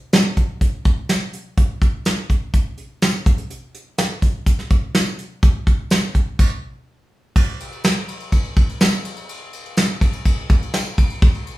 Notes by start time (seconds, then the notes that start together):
0.13 snare, closed hi-hat, tambourine
0.37 kick, closed hi-hat
0.61 kick, closed hi-hat
0.85 kick, closed hi-hat
1.09 snare, closed hi-hat, tambourine
1.33 closed hi-hat
1.57 kick, closed hi-hat
1.82 kick, closed hi-hat
2.05 snare, closed hi-hat, tambourine
2.30 kick, closed hi-hat
2.54 kick, closed hi-hat
2.78 closed hi-hat
3.02 snare, closed hi-hat, tambourine
3.26 kick, closed hi-hat
3.38 closed hi-hat
3.50 closed hi-hat
3.75 closed hi-hat
3.98 snare, closed hi-hat, tambourine
4.22 kick, closed hi-hat
4.46 kick, closed hi-hat
4.59 snare
4.70 kick, closed hi-hat
4.95 snare, closed hi-hat, tambourine
5.19 closed hi-hat
5.43 kick, closed hi-hat
5.67 kick, closed hi-hat
5.90 snare, closed hi-hat, tambourine
6.15 kick, closed hi-hat
6.39 kick, crash
7.36 kick, crash
7.60 ride
7.72 ride
7.84 snare, ride, tambourine
8.08 ride
8.20 ride
8.32 kick, ride
8.44 ride
8.56 kick, ride
8.69 ride
8.81 snare, ride, tambourine
8.93 ride
9.05 ride
9.16 ride
9.29 ride
9.53 ride
9.66 ride
9.77 snare, ride, tambourine
10.01 kick, ride
10.13 ride
10.25 kick, ride
10.49 kick, ride
10.62 ride
10.74 snare, ride, tambourine
10.86 ride
10.98 kick, ride
11.10 ride
11.22 kick, ride
11.34 ride
11.47 ride